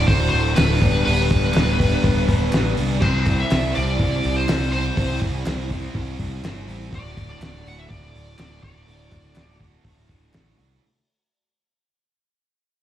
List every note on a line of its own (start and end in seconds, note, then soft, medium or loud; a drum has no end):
0.00 0.54 D2 medium
0.00 0.55 D2 loud
0.00 0.55 A2 medium
0.00 0.54 D3 medium
0.00 0.79 F#3 medium
0.00 0.79 D4 medium
0.00 0.79 A4 medium
0.07 0.28 D1 medium
0.07 0.55 A2 medium
0.07 0.57 D3 medium
0.07 0.56 A3 medium
0.07 0.58 F#4 loud
0.07 0.28 C5 loud
0.07 kick loud
0.07 open hi-hat loud
0.29 0.53 D1 loud
0.29 0.53 C5 medium
0.29 open hi-hat medium
0.55 0.78 D1 medium
0.55 0.79 D2 loud
0.55 0.79 A2 loud
0.55 0.80 D3 loud
0.55 0.80 A3 loud
0.55 1.04 B4 medium
0.55 snare loud
0.55 clap medium
0.55 open hi-hat medium
0.59 0.80 F#4 loud
0.79 1.02 D1 medium
0.79 1.52 G2 medium
0.79 1.04 D3 medium
0.79 2.99 G3 medium
0.79 1.05 G3 medium
0.79 1.05 B3 medium
0.79 3.00 D4 medium
0.79 1.06 D4 medium
0.79 1.07 G4 loud
0.79 3.00 B4 medium
0.79 kick loud
0.79 open hi-hat medium
0.84 1.03 G2 medium
1.04 1.27 D1 medium
1.04 1.79 G2 medium
1.04 1.79 D3 loud
1.04 1.53 G3 medium
1.04 1.54 B3 loud
1.04 1.55 D4 loud
1.04 1.57 G4 loud
1.04 2.73 B4 medium
1.04 open hi-hat medium
1.30 1.51 D1 medium
1.30 kick medium
1.30 clap medium
1.30 open hi-hat medium
1.54 1.96 D1 medium
1.54 2.26 G2 medium
1.54 2.27 D3 medium
1.54 1.82 G3 medium
1.54 1.80 B3 medium
1.54 1.78 D4 medium
1.54 1.78 G4 medium
1.54 snare loud
1.54 clap loud
1.54 open hi-hat medium
1.78 2.02 G3 medium
1.78 2.02 B3 medium
1.78 2.03 D4 medium
1.78 2.04 G4 medium
1.78 kick medium
1.78 open hi-hat medium
2.02 2.24 D1 medium
2.02 2.52 G3 medium
2.02 2.52 B3 medium
2.02 2.52 D4 medium
2.02 2.54 G4 medium
2.02 kick loud
2.02 open hi-hat medium
2.27 2.49 D1 loud
2.27 2.77 G2 medium
2.27 2.76 D3 medium
2.27 3.04 G3 medium
2.27 kick medium
2.27 open hi-hat medium
2.51 2.74 A1 medium
2.51 2.98 G2 medium
2.51 3.00 D3 loud
2.51 2.78 G3 loud
2.51 2.76 B3 loud
2.51 2.75 D4 loud
2.51 2.74 G4 loud
2.51 snare loud
2.51 clap loud
2.51 open hi-hat medium
2.75 2.98 C2 medium
2.75 3.00 G3 medium
2.75 3.00 B3 medium
2.75 3.00 D4 medium
2.75 3.02 G4 medium
2.75 open hi-hat medium
2.99 3.43 C2 medium
2.99 4.46 C3 medium
2.99 4.47 G3 medium
2.99 6.88 G3 medium
2.99 3.48 C4 loud
2.99 3.49 E4 medium
2.99 6.88 E4 medium
2.99 3.50 G4 loud
2.99 3.36 C5 loud
2.99 6.89 C5 medium
2.99 3.51 C5 loud
2.99 kick loud
2.99 crash loud
3.05 3.73 C4 loud
3.26 kick medium
3.26 clap medium
3.26 open hi-hat medium
3.40 3.75 E5 loud
3.48 3.76 C4 medium
3.48 3.75 E4 medium
3.48 3.74 G4 medium
3.48 3.72 C5 medium
3.48 snare loud
3.48 clap medium
3.48 open hi-hat medium
3.52 3.72 C2 medium
3.73 4.47 G3 medium
3.73 3.96 C4 medium
3.73 3.97 E4 medium
3.73 3.98 G4 medium
3.73 3.99 C5 medium
3.73 4.38 D5 loud
3.73 open hi-hat medium
3.77 3.97 C2 medium
3.77 4.47 C3 medium
3.97 4.20 C2 medium
3.97 4.46 C4 medium
3.97 4.47 E4 medium
3.97 4.48 G4 medium
3.97 4.48 C5 medium
3.97 kick loud
3.97 open hi-hat medium
4.23 4.45 C2 loud
4.23 open hi-hat medium
4.36 4.71 C5 medium
4.46 4.90 C2 loud
4.46 4.93 C3 loud
4.46 4.94 G3 loud
4.46 4.73 C4 loud
4.46 4.72 E4 loud
4.46 4.71 G4 loud
4.46 4.70 C5 loud
4.46 snare loud
4.46 clap loud
4.46 open hi-hat medium
4.52 4.98 C4 loud
4.71 4.95 C4 medium
4.71 4.96 E4 medium
4.71 4.96 G4 medium
4.71 4.97 C5 medium
4.71 5.18 C5 medium
4.71 open hi-hat medium
4.95 5.18 C2 loud
4.95 5.69 C3 loud
4.95 5.70 G3 loud
4.95 5.43 C4 loud
4.95 5.45 E4 loud
4.95 5.45 G4 loud
4.95 5.47 C5 loud
4.95 kick loud
4.95 open hi-hat medium
5.00 5.68 C4 loud
5.21 5.42 C2 medium
5.21 kick medium
5.21 clap medium
5.21 open hi-hat medium
5.44 5.87 C2 loud
5.44 5.71 C4 medium
5.44 5.71 E4 medium
5.44 5.70 G4 medium
5.44 5.68 C5 medium
5.44 snare loud
5.44 clap loud
5.44 open hi-hat medium
5.70 6.42 C3 medium
5.70 6.43 G3 medium
5.70 5.93 C4 medium
5.70 5.95 E4 medium
5.70 5.96 G4 medium
5.70 5.97 C5 medium
5.70 kick medium
5.70 open hi-hat medium
5.94 6.15 C2 medium
5.94 6.43 C4 medium
5.94 6.44 E4 medium
5.94 6.44 G4 medium
5.94 6.45 C5 medium
5.94 kick loud
5.94 open hi-hat medium
6.19 6.40 C2 loud
6.19 kick medium
6.19 open hi-hat medium
6.43 6.64 G1 loud
6.43 6.90 C3 loud
6.43 6.91 G3 loud
6.43 6.70 C4 loud
6.43 6.68 E4 loud
6.43 6.67 G4 loud
6.43 6.66 C5 loud
6.43 snare loud
6.43 clap medium
6.43 open hi-hat medium
6.67 6.88 A1 loud
6.67 6.92 C4 medium
6.67 6.92 E4 medium
6.67 6.91 G4 medium
6.67 6.91 C5 medium
6.67 open hi-hat medium
6.91 7.33 D1 loud
6.91 8.38 D2 medium
6.91 7.39 A2 loud
6.91 7.42 D3 loud
6.91 7.43 A3 loud
6.91 8.62 A3 medium
6.91 8.62 F#4 medium
6.91 7.44 F#4 loud
6.91 8.62 D5 medium
6.91 kick loud
6.91 open hi-hat medium
6.95 7.29 D5 loud
7.17 kick medium
7.17 clap medium
7.17 open hi-hat medium
7.30 7.67 D5 loud
7.41 7.62 D1 medium
7.41 7.88 A2 medium
7.41 7.68 D3 medium
7.41 7.66 A3 medium
7.41 7.64 F#4 medium
7.41 snare loud
7.41 clap loud
7.41 open hi-hat medium
7.65 7.86 D1 loud
7.65 8.38 A2 medium
7.65 7.90 D3 medium
7.65 7.91 A3 medium
7.65 7.92 F#4 medium
7.65 7.78 F#5 loud
7.65 open hi-hat medium
7.69 8.37 D2 medium
7.79 7.89 E5 loud
7.89 8.11 D1 medium
7.89 8.38 A2 medium
7.89 8.40 D3 medium
7.89 8.40 A3 medium
7.89 8.41 F#4 medium
7.89 8.35 D5 loud
7.89 kick loud
7.89 open hi-hat medium
8.14 8.34 D1 loud
8.14 open hi-hat medium
8.38 8.59 D1 medium
8.38 8.66 D2 loud
8.38 8.62 A2 loud
8.38 8.64 D3 loud
8.38 8.63 A3 loud
8.38 8.62 F#4 loud
8.38 8.61 D5 medium
8.38 snare loud
8.38 clap loud
8.38 open hi-hat medium
8.63 8.83 D1 medium
8.63 8.84 D2 medium
8.63 8.86 A2 medium
8.63 8.86 D3 medium
8.63 10.79 A3 medium
8.63 8.87 A3 loud
8.63 8.88 F#4 loud
8.63 10.80 F#4 medium
8.63 9.56 D5 medium
8.63 10.80 D5 medium
8.63 kick loud
8.63 open hi-hat medium
8.86 9.07 D1 medium
8.86 9.59 D2 medium
8.86 9.33 A2 loud
8.86 9.34 D3 loud
8.86 9.36 A3 loud
8.86 9.36 F#4 loud
8.86 open hi-hat medium
9.12 9.32 D1 medium
9.12 kick medium
9.12 clap medium
9.12 open hi-hat medium
9.34 9.76 D1 medium
9.34 10.07 D2 medium
9.34 9.83 A2 medium
9.34 9.61 D3 medium
9.34 9.60 A3 medium
9.34 9.58 F#4 medium
9.34 snare loud
9.34 clap loud
9.34 open hi-hat medium
9.59 9.84 D3 medium
9.59 9.85 A3 medium
9.59 9.86 F#4 medium
9.59 kick medium
9.59 open hi-hat medium
9.84 10.05 D1 medium
9.84 10.33 A2 medium
9.84 10.34 D3 medium
9.84 10.34 A3 medium
9.84 10.35 F#4 medium
9.84 kick loud
9.84 open hi-hat medium
10.08 10.29 D1 medium
10.08 10.57 D2 medium
10.08 10.56 A2 medium
10.08 10.55 D3 medium
10.08 kick medium
10.08 open hi-hat medium
10.33 10.54 A1 medium
10.33 10.80 D2 loud
10.33 10.80 A2 loud
10.33 10.60 D3 loud
10.33 10.59 A3 loud
10.33 10.57 F#4 loud
10.33 snare loud
10.33 clap loud
10.33 open hi-hat medium
10.58 10.78 C2 medium
10.58 10.82 D3 medium
10.58 10.81 A3 medium
10.58 10.80 F#4 medium
10.58 open hi-hat medium